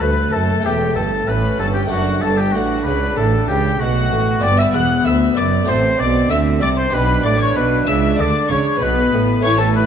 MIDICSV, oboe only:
0, 0, Header, 1, 2, 480
1, 0, Start_track
1, 0, Key_signature, 2, "major"
1, 0, Tempo, 628931
1, 1459, Time_signature, 4, 2, 24, 8
1, 7527, End_track
2, 0, Start_track
2, 0, Title_t, "Oboe"
2, 0, Program_c, 0, 68
2, 6, Note_on_c, 0, 71, 89
2, 249, Note_on_c, 0, 69, 83
2, 260, Note_off_c, 0, 71, 0
2, 500, Note_on_c, 0, 67, 86
2, 511, Note_off_c, 0, 69, 0
2, 726, Note_off_c, 0, 67, 0
2, 731, Note_on_c, 0, 69, 83
2, 975, Note_on_c, 0, 71, 83
2, 986, Note_off_c, 0, 69, 0
2, 1213, Note_off_c, 0, 71, 0
2, 1218, Note_on_c, 0, 69, 86
2, 1272, Note_off_c, 0, 69, 0
2, 1325, Note_on_c, 0, 67, 72
2, 1383, Note_off_c, 0, 67, 0
2, 1461, Note_on_c, 0, 66, 83
2, 1690, Note_on_c, 0, 69, 84
2, 1701, Note_off_c, 0, 66, 0
2, 1810, Note_on_c, 0, 67, 77
2, 1821, Note_off_c, 0, 69, 0
2, 1925, Note_on_c, 0, 66, 85
2, 1937, Note_off_c, 0, 67, 0
2, 2173, Note_on_c, 0, 71, 85
2, 2185, Note_off_c, 0, 66, 0
2, 2414, Note_off_c, 0, 71, 0
2, 2418, Note_on_c, 0, 69, 76
2, 2652, Note_off_c, 0, 69, 0
2, 2656, Note_on_c, 0, 67, 89
2, 2901, Note_on_c, 0, 66, 87
2, 2913, Note_off_c, 0, 67, 0
2, 3379, Note_on_c, 0, 74, 101
2, 3391, Note_off_c, 0, 66, 0
2, 3505, Note_on_c, 0, 76, 88
2, 3516, Note_off_c, 0, 74, 0
2, 3619, Note_on_c, 0, 78, 91
2, 3631, Note_off_c, 0, 76, 0
2, 3868, Note_on_c, 0, 76, 93
2, 3879, Note_off_c, 0, 78, 0
2, 4092, Note_off_c, 0, 76, 0
2, 4096, Note_on_c, 0, 74, 93
2, 4340, Note_on_c, 0, 72, 97
2, 4351, Note_off_c, 0, 74, 0
2, 4577, Note_on_c, 0, 74, 99
2, 4588, Note_off_c, 0, 72, 0
2, 4807, Note_off_c, 0, 74, 0
2, 4811, Note_on_c, 0, 76, 95
2, 5048, Note_off_c, 0, 76, 0
2, 5053, Note_on_c, 0, 74, 94
2, 5107, Note_off_c, 0, 74, 0
2, 5178, Note_on_c, 0, 72, 88
2, 5297, Note_on_c, 0, 71, 97
2, 5309, Note_off_c, 0, 72, 0
2, 5526, Note_off_c, 0, 71, 0
2, 5530, Note_on_c, 0, 74, 101
2, 5649, Note_off_c, 0, 74, 0
2, 5658, Note_on_c, 0, 73, 88
2, 5766, Note_off_c, 0, 73, 0
2, 5770, Note_on_c, 0, 71, 99
2, 6006, Note_off_c, 0, 71, 0
2, 6013, Note_on_c, 0, 76, 96
2, 6266, Note_on_c, 0, 74, 87
2, 6277, Note_off_c, 0, 76, 0
2, 6497, Note_off_c, 0, 74, 0
2, 6501, Note_on_c, 0, 73, 102
2, 6739, Note_on_c, 0, 71, 104
2, 6751, Note_off_c, 0, 73, 0
2, 7046, Note_off_c, 0, 71, 0
2, 7213, Note_on_c, 0, 73, 105
2, 7322, Note_off_c, 0, 73, 0
2, 7326, Note_on_c, 0, 69, 86
2, 7442, Note_off_c, 0, 69, 0
2, 7447, Note_on_c, 0, 71, 97
2, 7527, Note_off_c, 0, 71, 0
2, 7527, End_track
0, 0, End_of_file